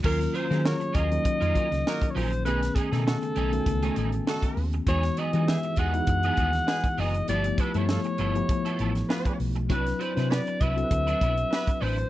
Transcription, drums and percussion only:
0.04 kick loud
0.04 crash loud
0.21 snare soft
0.21 closed hi-hat medium
0.35 closed hi-hat medium
0.51 snare soft
0.51 closed hi-hat medium
0.65 snare loud
0.81 closed hi-hat medium
0.94 kick loud
0.94 closed hi-hat medium
1.12 closed hi-hat medium
1.25 kick loud
1.25 closed hi-hat loud
1.42 closed hi-hat medium
1.55 kick medium
1.55 closed hi-hat medium
1.72 snare soft
1.72 closed hi-hat soft
1.87 snare loud
2.02 kick medium
2.02 closed hi-hat medium
2.16 open hi-hat medium
2.32 closed hi-hat medium
2.46 closed hi-hat medium
2.63 snare soft
2.63 closed hi-hat medium
2.76 kick medium
2.76 closed hi-hat medium
2.93 snare soft
2.93 closed hi-hat medium
3.08 snare loud
3.23 closed hi-hat soft
3.36 closed hi-hat medium
3.53 closed hi-hat medium
3.66 kick loud
3.66 closed hi-hat loud
3.82 closed hi-hat medium
3.96 closed hi-hat medium
4.12 closed hi-hat soft
4.27 snare loud
4.42 kick medium
4.42 closed hi-hat medium
4.57 open hi-hat medium
4.73 closed hi-hat medium
4.87 kick loud
4.87 closed hi-hat medium
5.03 snare soft
5.03 closed hi-hat medium
5.17 closed hi-hat medium
5.33 closed hi-hat medium
5.48 snare loud
5.63 closed hi-hat medium
5.76 kick medium
5.76 closed hi-hat medium
5.94 closed hi-hat medium
6.07 kick loud
6.07 closed hi-hat medium
6.23 closed hi-hat medium
6.37 kick medium
6.37 closed hi-hat medium
6.53 snare soft
6.53 closed hi-hat medium
6.68 snare loud
6.84 kick medium
6.84 closed hi-hat medium
6.98 open hi-hat medium
7.14 closed hi-hat medium
7.28 closed hi-hat medium
7.44 closed hi-hat medium
7.58 kick medium
7.58 closed hi-hat medium
7.74 closed hi-hat medium
7.89 snare loud
8.04 closed hi-hat soft
8.18 closed hi-hat medium
8.35 closed hi-hat medium
8.49 kick loud
8.49 closed hi-hat loud
8.66 closed hi-hat medium
8.79 closed hi-hat medium
8.95 snare soft
8.95 closed hi-hat medium
9.10 snare loud
9.25 kick medium
9.25 closed hi-hat medium
9.40 open hi-hat medium
9.56 closed hi-hat medium
9.70 kick loud
9.70 closed hi-hat medium
9.87 snare soft
9.87 closed hi-hat medium
10.01 closed hi-hat medium
10.17 snare soft
10.17 closed hi-hat medium
10.32 snare loud
10.47 closed hi-hat soft
10.61 kick loud
10.61 closed hi-hat medium
10.78 closed hi-hat medium
10.91 kick loud
10.91 closed hi-hat loud
11.08 closed hi-hat medium
11.21 kick medium
11.21 closed hi-hat medium
11.38 closed hi-hat medium
11.53 snare loud
11.67 kick loud
11.67 closed hi-hat medium
11.82 open hi-hat medium
11.98 closed hi-hat soft

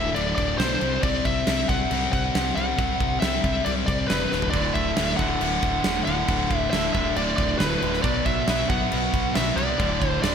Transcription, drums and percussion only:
0.16 crash medium
0.38 kick medium
0.38 crash medium
0.60 snare loud
0.60 crash medium
0.81 crash medium
1.03 kick loud
1.03 crash loud
1.25 kick medium
1.25 crash medium
1.47 snare loud
1.47 crash loud
1.69 kick loud
1.69 crash medium
1.91 crash medium
2.13 kick medium
2.13 crash medium
2.35 snare loud
2.35 crash medium
2.57 crash medium
2.79 kick loud
2.79 crash medium
3.00 kick loud
3.00 crash medium
3.22 snare loud
3.22 crash medium
3.44 kick medium
3.44 crash medium
3.66 crash medium
3.88 kick loud
3.88 crash medium
4.10 snare loud
4.10 crash medium
4.32 snare medium
4.42 floor tom medium
4.53 kick loud
4.53 crash loud
4.75 kick medium
4.75 crash medium
4.97 snare loud
4.97 crash loud
5.19 kick medium
5.19 crash medium
5.41 crash loud
5.62 kick loud
5.62 crash medium
5.84 snare loud
5.84 crash medium
6.07 crash medium
6.28 kick loud
6.28 crash medium
6.51 kick loud
6.51 crash medium
6.73 snare loud
6.73 crash medium
6.95 kick medium
6.95 crash medium
7.16 crash medium
7.38 kick loud
7.38 crash medium
7.60 snare loud
7.60 crash medium
7.82 crash medium
7.94 snare soft
8.04 kick loud
8.04 crash medium
8.26 kick medium
8.26 crash medium
8.48 snare loud
8.48 crash medium
8.70 kick loud
8.70 crash medium
8.92 crash medium
9.14 kick loud
9.14 crash medium
9.35 snare loud
9.35 crash medium
9.58 crash medium
9.80 kick loud
9.80 crash medium
10.02 kick loud
10.02 crash medium
10.24 snare loud
10.24 crash loud

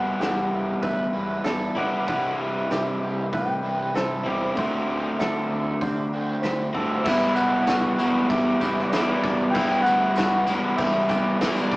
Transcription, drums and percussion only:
0.21 snare loud
0.21 open hi-hat soft
0.83 kick loud
0.83 open hi-hat medium
1.44 snare loud
1.44 open hi-hat soft
1.77 kick medium
2.08 kick loud
2.08 open hi-hat soft
2.71 snare loud
2.71 open hi-hat soft
3.33 kick loud
3.33 open hi-hat soft
3.95 snare loud
3.95 open hi-hat soft
4.26 kick medium
4.57 kick loud
4.57 open hi-hat soft
5.20 snare loud
5.20 open hi-hat soft
5.81 kick loud
5.81 open hi-hat medium
6.43 snare medium
6.43 open hi-hat medium
6.75 kick medium
7.06 kick loud
7.06 crash loud
7.06 crash medium
7.21 tambourine soft
7.36 tambourine medium
7.36 crash medium
7.67 snare loud
7.67 tambourine loud
7.67 crash medium
7.99 tambourine medium
7.99 crash medium
8.30 kick loud
8.30 crash medium
8.61 kick medium
8.61 tambourine medium
8.61 crash medium
8.78 snare soft
8.93 snare loud
8.93 tambourine loud
8.93 crash medium
9.24 kick medium
9.24 tambourine soft
9.24 crash medium
9.55 kick loud
9.55 crash loud
9.71 tambourine soft
9.86 tambourine medium
9.86 crash medium
10.16 snare loud
10.16 tambourine loud
10.16 crash medium
10.31 tambourine soft
10.47 tambourine medium
10.47 crash medium
10.78 kick loud
10.78 crash medium
11.09 kick medium
11.09 tambourine medium
11.09 crash medium
11.41 snare loud
11.41 tambourine medium
11.41 crash loud
11.56 tambourine medium
11.72 kick medium
11.72 tambourine soft
11.72 crash medium

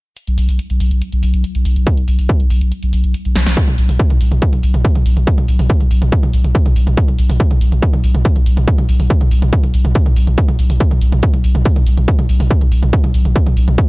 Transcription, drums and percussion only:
0.17 closed hi-hat medium
0.27 closed hi-hat medium
0.38 open hi-hat loud
0.49 open hi-hat medium
0.59 closed hi-hat medium
0.70 closed hi-hat medium
0.80 open hi-hat loud
0.91 closed hi-hat medium
1.02 closed hi-hat medium
1.13 closed hi-hat medium
1.23 open hi-hat loud
1.34 closed hi-hat medium
1.44 closed hi-hat medium
1.55 closed hi-hat medium
1.65 open hi-hat loud
1.76 closed hi-hat medium
1.87 kick loud
1.87 closed hi-hat medium
1.97 closed hi-hat medium
2.08 open hi-hat loud
2.19 open hi-hat medium
2.29 kick loud
2.29 closed hi-hat medium
2.40 closed hi-hat medium
2.50 open hi-hat loud
2.61 closed hi-hat medium
2.72 closed hi-hat medium
2.83 closed hi-hat medium
2.93 open hi-hat loud
3.04 closed hi-hat medium
3.14 closed hi-hat medium
3.25 closed hi-hat medium
3.36 snare medium
3.36 open hi-hat loud
3.46 snare medium
3.46 closed hi-hat medium
3.57 kick loud
3.57 closed hi-hat medium
3.68 closed hi-hat medium
3.68 mid tom medium
3.78 open hi-hat loud
3.89 mid tom medium
3.89 open hi-hat medium
3.99 kick loud
3.99 closed hi-hat medium
4.10 closed hi-hat medium
4.10 mid tom medium
4.21 open hi-hat loud
4.32 closed hi-hat medium
4.32 mid tom medium
4.42 kick loud
4.42 closed hi-hat medium
4.53 closed hi-hat medium
4.53 mid tom medium
4.63 open hi-hat loud
4.74 closed hi-hat medium
4.74 mid tom medium
4.85 kick loud
4.85 closed hi-hat medium
4.95 closed hi-hat medium
4.95 mid tom medium
5.06 open hi-hat loud
5.17 closed hi-hat medium
5.17 mid tom medium
5.27 kick loud
5.27 closed hi-hat medium
5.38 closed hi-hat medium
5.38 mid tom medium
5.48 open hi-hat loud
5.59 mid tom medium
5.59 open hi-hat medium
5.70 kick loud
5.70 closed hi-hat medium
5.80 closed hi-hat medium
5.80 mid tom medium
5.91 open hi-hat loud
6.02 closed hi-hat medium
6.02 mid tom medium
6.12 kick loud
6.12 closed hi-hat medium
6.23 closed hi-hat medium
6.23 mid tom medium
6.34 open hi-hat loud
6.44 closed hi-hat medium
6.44 mid tom medium
6.55 kick loud
6.55 closed hi-hat medium
6.66 closed hi-hat medium
6.66 mid tom medium
6.76 open hi-hat loud
6.87 closed hi-hat medium
6.87 mid tom medium
6.97 kick loud
6.97 closed hi-hat medium
7.08 closed hi-hat medium
7.08 mid tom medium
7.19 open hi-hat loud
7.30 mid tom medium
7.30 open hi-hat medium
7.40 kick loud
7.40 closed hi-hat medium
7.51 closed hi-hat medium
7.51 mid tom loud
7.61 open hi-hat loud
7.72 closed hi-hat medium
7.72 mid tom medium
7.82 kick loud
7.82 closed hi-hat medium
7.93 closed hi-hat medium
7.93 mid tom medium
8.04 open hi-hat loud
8.15 closed hi-hat medium
8.15 mid tom medium
8.25 kick loud
8.25 closed hi-hat medium
8.36 closed hi-hat medium
8.36 mid tom medium
8.46 open hi-hat loud
8.57 closed hi-hat medium
8.57 mid tom medium
8.67 kick loud
8.67 closed hi-hat medium
8.78 closed hi-hat medium
8.78 mid tom loud
8.89 open hi-hat loud
9.00 mid tom medium
9.00 open hi-hat medium
9.10 kick loud
9.10 closed hi-hat medium
9.21 closed hi-hat medium
9.21 mid tom loud
9.31 open hi-hat loud
9.42 closed hi-hat medium
9.42 mid tom medium
9.53 kick loud
9.53 closed hi-hat medium
9.64 closed hi-hat medium
9.64 mid tom medium
9.74 open hi-hat loud
9.85 closed hi-hat soft
9.85 mid tom medium
9.95 kick loud
9.95 closed hi-hat medium
10.06 closed hi-hat medium
10.06 mid tom loud
10.16 open hi-hat loud
10.27 closed hi-hat soft
10.27 mid tom medium
10.38 kick loud
10.38 closed hi-hat medium
10.49 closed hi-hat medium
10.49 mid tom loud
10.59 open hi-hat loud
10.70 mid tom medium
10.70 open hi-hat medium
10.80 kick loud
10.80 closed hi-hat medium
10.91 closed hi-hat medium
10.91 mid tom loud
11.02 open hi-hat loud
11.12 closed hi-hat soft
11.12 mid tom medium
11.23 kick loud
11.23 closed hi-hat medium
11.34 closed hi-hat soft
11.34 mid tom medium
11.44 open hi-hat loud
11.55 closed hi-hat soft
11.55 mid tom loud
11.65 kick loud
11.65 closed hi-hat medium
11.76 closed hi-hat soft
11.76 mid tom medium
11.87 open hi-hat loud
11.98 closed hi-hat soft
11.98 mid tom medium
12.08 kick loud
12.08 closed hi-hat medium
12.19 closed hi-hat soft
12.19 mid tom loud
12.29 open hi-hat loud
12.40 mid tom medium
12.40 open hi-hat medium
12.50 kick loud
12.50 closed hi-hat medium
12.61 closed hi-hat soft
12.61 mid tom medium
12.72 open hi-hat loud
12.83 closed hi-hat soft
12.83 mid tom medium
12.93 kick loud
12.93 closed hi-hat medium
13.04 closed hi-hat soft
13.04 mid tom medium
13.14 open hi-hat loud
13.25 closed hi-hat soft
13.25 mid tom medium
13.36 kick loud
13.36 closed hi-hat medium
13.47 closed hi-hat soft
13.47 mid tom medium
13.57 open hi-hat loud
13.68 closed hi-hat soft
13.68 mid tom medium
13.78 kick loud
13.78 closed hi-hat medium

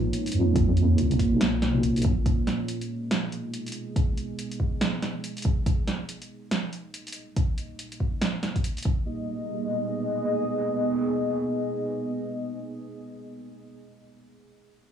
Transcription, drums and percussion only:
0.13 closed hi-hat medium
0.26 closed hi-hat soft
0.26 closed hi-hat medium
0.32 closed hi-hat medium
0.56 kick loud
0.56 closed hi-hat medium
0.77 closed hi-hat medium
0.98 closed hi-hat medium
1.11 closed hi-hat medium
1.19 kick medium
1.19 open hi-hat medium
1.41 snare loud
1.41 closed hi-hat medium
1.62 snare medium
1.62 closed hi-hat soft
1.83 closed hi-hat medium
1.96 closed hi-hat soft
1.96 closed hi-hat medium
2.02 kick loud
2.02 closed hi-hat medium
2.26 kick loud
2.26 closed hi-hat medium
2.47 snare medium
2.47 closed hi-hat soft
2.68 closed hi-hat medium
2.81 closed hi-hat soft
3.11 snare loud
3.11 closed hi-hat medium
3.32 closed hi-hat soft
3.54 closed hi-hat medium
3.66 closed hi-hat soft
3.66 closed hi-hat medium
3.72 closed hi-hat medium
3.96 kick loud
3.96 closed hi-hat medium
4.18 closed hi-hat soft
4.39 closed hi-hat medium
4.52 closed hi-hat soft
4.60 kick medium
4.81 snare loud
4.81 closed hi-hat medium
5.02 snare medium
5.02 closed hi-hat soft
5.24 closed hi-hat medium
5.37 closed hi-hat soft
5.37 closed hi-hat medium
5.42 kick loud
5.42 closed hi-hat medium
5.66 kick loud
5.66 closed hi-hat medium
5.88 snare medium
5.88 closed hi-hat medium
6.09 closed hi-hat medium
6.22 closed hi-hat soft
6.51 snare loud
6.51 closed hi-hat medium
6.73 closed hi-hat soft
6.94 closed hi-hat medium
7.07 closed hi-hat soft
7.07 closed hi-hat medium
7.12 closed hi-hat medium
7.36 kick loud
7.36 closed hi-hat medium
7.58 closed hi-hat medium
7.79 closed hi-hat medium
7.92 closed hi-hat soft
8.00 kick medium
8.21 snare loud
8.21 closed hi-hat medium
8.43 snare medium
8.43 closed hi-hat soft
8.56 kick medium
8.56 closed hi-hat soft
8.64 closed hi-hat medium
8.77 closed hi-hat soft
8.77 closed hi-hat medium
8.83 kick loud
8.83 closed hi-hat medium

